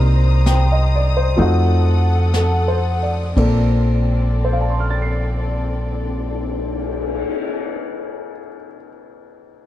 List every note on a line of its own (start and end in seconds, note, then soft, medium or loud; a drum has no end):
0.00 1.34 C2 medium
0.00 1.36 G3 soft
0.00 1.37 A#3 soft
0.00 1.37 C4 soft
0.00 1.38 D#4 soft
0.00 1.41 A#4 soft
0.00 1.37 C5 medium
0.00 1.36 A#5 medium
0.00 3.34 D#6 medium
0.46 0.90 G5 soft
0.46 snare soft
0.46 hi-hat pedal medium
0.72 1.10 D#5 soft
0.96 1.22 D5 soft
1.17 1.48 C5 soft
1.36 3.34 F2 medium
1.36 3.36 F3 soft
1.36 3.37 A3 soft
1.36 3.36 C4 soft
1.36 3.38 D#4 soft
1.36 3.36 A4 medium
1.36 3.35 F#5 medium
1.36 brush sweep soft
1.42 3.39 F#4 medium
2.34 3.01 A4 soft
2.34 snare soft
2.34 hi-hat pedal medium
2.68 3.22 C5 soft
3.03 3.58 D5 soft
3.36 7.23 A#1 medium
3.36 7.26 A#2 medium
3.36 7.28 A#3 soft
3.36 7.23 C4 medium
3.36 7.28 C4 soft
3.36 7.28 D4 soft
3.36 7.24 A4 medium
3.36 7.29 A4 medium
3.36 7.24 D5 medium
3.36 kick soft
3.36 ride medium
4.10 cymbal swell soft
4.44 8.31 C5 soft
4.52 8.38 F5 soft
4.61 8.47 A5 soft
4.70 8.56 C6 soft
4.80 8.66 F6 soft
4.90 8.76 A6 soft
5.02 8.88 C7 soft